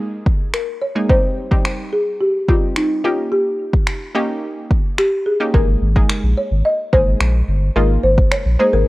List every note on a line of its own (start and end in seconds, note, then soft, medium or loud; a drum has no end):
0.00 0.59 G#3 medium
0.00 0.59 A#3 medium
0.00 0.60 D#4 medium
0.00 0.50 G#4 medium
0.00 0.60 G#4 loud
0.26 kick medium
0.54 0.82 A#4 medium
0.54 finger snap loud
0.82 1.10 C#5 medium
0.95 1.07 G#3 medium
0.95 1.07 A#3 medium
0.95 1.07 D#4 medium
0.95 1.07 G#4 medium
1.09 1.43 G3 medium
1.09 1.43 C4 medium
1.09 1.43 D#4 medium
1.09 1.43 G4 medium
1.09 1.95 C5 loud
1.09 kick loud
1.51 2.29 G3 medium
1.51 2.29 C4 medium
1.51 2.29 D#4 medium
1.51 2.29 G4 medium
1.51 kick medium
1.65 finger snap loud
1.93 2.19 G#4 medium
2.21 2.49 G4 medium
2.48 3.04 G3 medium
2.48 3.04 C4 medium
2.48 3.03 D#4 medium
2.48 2.77 F4 medium
2.48 3.03 G4 medium
2.48 kick medium
2.76 3.02 D#4 medium
2.76 finger snap loud
3.04 3.93 A#3 medium
3.04 3.93 C#4 medium
3.04 3.93 D#4 medium
3.04 3.33 F4 medium
3.04 3.93 G4 medium
3.32 4.97 G4 medium
3.74 kick medium
3.87 finger snap loud
4.15 5.04 A#3 medium
4.15 5.04 C#4 medium
4.15 5.04 D#4 medium
4.15 5.04 G4 loud
4.71 kick medium
4.98 5.27 G4 loud
4.98 finger snap loud
5.26 5.52 G#4 medium
5.40 5.51 A#3 medium
5.40 5.51 C#4 medium
5.40 5.51 D#4 medium
5.40 5.51 G4 medium
5.54 5.76 G#1 loud
5.54 5.87 G#3 medium
5.54 5.87 A#3 medium
5.54 5.87 D#4 medium
5.54 5.88 G#4 medium
5.54 6.40 A#4 loud
5.54 kick loud
5.82 6.04 G#1 loud
5.96 6.73 G#3 medium
5.96 6.74 A#3 medium
5.96 6.74 D#4 medium
5.96 6.74 G#4 medium
5.96 kick medium
6.09 finger snap loud
6.23 6.34 A#1 medium
6.37 6.63 C#5 medium
6.51 6.62 G#1 loud
6.65 6.91 D#5 loud
6.93 7.15 G#1 medium
6.93 7.59 G#3 medium
6.93 7.60 A#3 medium
6.93 7.60 D#4 medium
6.93 7.60 G#4 medium
6.93 7.72 C5 loud
6.93 kick medium
7.20 7.42 A#1 medium
7.20 finger snap loud
7.48 7.70 G1 medium
7.76 7.98 G#1 loud
7.76 8.43 G#3 medium
7.76 8.43 A#3 medium
7.76 8.43 D#4 medium
7.76 8.43 F4 medium
7.76 8.02 A#4 loud
8.04 8.26 G#1 loud
8.04 8.32 C5 loud
8.18 kick medium
8.32 8.60 C#5 loud
8.32 finger snap loud
8.46 8.57 A#1 medium
8.59 8.88 G#3 medium
8.59 8.88 A#3 medium
8.59 8.88 D#4 medium
8.59 8.88 G#4 medium
8.59 8.74 C5 loud
8.73 8.84 G#1 loud
8.73 8.88 A#4 loud